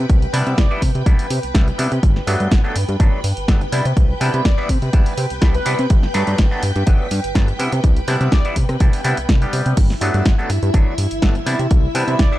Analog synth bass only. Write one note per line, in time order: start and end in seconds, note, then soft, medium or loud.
0.10 0.27 C2 loud
0.34 0.43 C3 loud
0.47 0.55 C3 medium
0.58 0.67 C2 medium
0.82 0.91 C3 medium
0.95 1.03 C3 loud
1.06 1.15 C2 medium
1.30 1.39 C3 medium
1.44 1.53 C2 soft
1.55 1.72 C2 medium
1.79 1.88 C3 medium
1.92 2.00 C3 medium
2.03 2.20 G1 loud
2.27 2.36 G2 loud
2.40 2.48 G2 medium
2.52 2.60 G1 medium
2.76 2.85 G2 medium
2.89 2.96 G2 medium
3.00 3.09 G1 medium
3.24 3.33 G2 medium
3.37 3.46 G1 soft
3.48 3.66 G1 medium
3.73 3.81 C3 medium
3.85 3.93 C3 medium
3.97 4.14 C2 loud
4.21 4.30 C3 loud
4.34 4.42 C3 medium
4.45 4.54 C2 medium
4.69 4.78 C3 medium
4.82 4.90 C3 medium
4.94 5.02 C2 medium
5.18 5.27 C3 medium
5.31 5.40 C2 soft
5.42 5.59 C2 loud
5.66 5.75 C3 medium
5.79 5.87 C3 medium
5.90 6.07 G1 loud
6.15 6.24 G2 loud
6.27 6.35 G2 medium
6.39 6.48 G1 medium
6.63 6.72 G2 medium
6.76 6.84 G2 medium
6.87 6.96 G1 medium
7.11 7.20 G2 loud
7.24 7.33 G1 soft
7.35 7.53 G1 loud
7.60 7.68 C3 medium
7.72 7.80 C3 medium
7.84 8.01 C2 loud
8.08 8.17 C3 loud
8.21 8.29 C3 loud
8.32 8.41 C2 medium
8.56 8.65 C3 medium
8.69 8.77 C3 medium
8.81 8.89 C2 medium
9.05 9.14 C3 medium
9.18 9.27 C2 soft
9.29 9.46 C2 medium
9.53 9.62 C3 medium
9.66 9.74 C3 medium
9.77 9.94 G1 loud
10.01 10.10 G2 loud
10.14 10.22 G2 medium
10.26 10.35 G1 medium
10.50 10.59 G2 medium
10.63 10.71 G2 medium
10.74 10.83 G1 medium
10.98 11.07 G2 medium
11.11 11.20 G1 soft
11.22 11.40 G1 medium
11.46 11.55 C3 medium
11.59 11.67 C3 medium
11.71 11.88 C2 loud
11.95 12.04 C3 loud
12.08 12.16 C3 medium
12.19 12.28 C2 medium